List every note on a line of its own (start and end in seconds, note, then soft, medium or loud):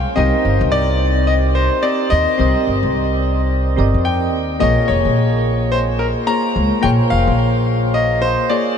0.00 0.18 G5 loud
0.16 0.30 C2 loud
0.16 1.80 C4 medium
0.16 1.82 D#4 loud
0.16 1.81 G4 medium
0.16 1.81 A#4 medium
0.16 1.81 C5 medium
0.16 0.74 D#5 loud
0.45 0.58 G1 medium
0.61 1.67 C2 loud
0.72 1.24 D5 loud
1.27 1.33 D#5 medium
1.55 1.84 C5 medium
1.83 2.07 C4 medium
1.83 2.07 G4 medium
1.83 2.07 A#4 medium
1.83 2.12 D5 loud
1.83 2.08 D5 medium
1.83 2.08 D#5 medium
2.10 2.25 D#2 medium
2.10 4.01 D#5 loud
2.38 2.52 C2 loud
2.38 3.75 C4 medium
2.38 3.76 G4 medium
2.38 3.76 A#4 medium
2.38 3.76 C5 medium
2.38 3.77 D#5 medium
2.67 2.80 G1 medium
2.83 3.78 C2 loud
3.76 3.91 G1 medium
3.76 4.58 C4 medium
3.76 4.58 G4 medium
3.76 4.59 A#4 medium
3.76 4.59 D5 medium
3.76 4.59 D#5 medium
3.94 4.34 F2 medium
4.05 4.63 G5 medium
4.34 4.57 D#2 medium
4.59 4.75 A#1 loud
4.59 6.24 A#3 medium
4.59 6.25 F4 medium
4.59 6.25 G#4 medium
4.59 6.26 A#4 medium
4.59 6.26 C#5 loud
4.59 4.90 D#5 loud
4.88 5.02 F1 medium
4.88 5.68 C#5 loud
5.05 6.12 A#1 medium
5.72 5.78 C5 loud
5.99 6.06 A#4 medium
6.27 6.51 A#3 medium
6.27 6.51 F4 medium
6.27 6.52 G#4 medium
6.27 6.52 C5 medium
6.27 6.52 C#5 medium
6.27 6.85 A#5 loud
6.56 6.69 C#2 medium
6.82 6.97 A#1 loud
6.82 8.46 A#3 medium
6.82 8.47 F4 medium
6.82 8.47 G#4 medium
6.82 8.48 C5 medium
6.82 8.48 C#5 loud
6.82 6.89 G5 loud
7.10 7.25 F1 medium
7.10 7.97 F5 loud
7.27 8.34 A#1 loud
7.94 8.23 D#5 loud
8.22 8.51 C5 loud
8.50 8.74 A#3 medium
8.50 8.74 F4 medium
8.50 8.74 G#4 medium
8.50 8.74 C5 medium
8.50 8.74 C#5 medium
8.50 8.78 D5 loud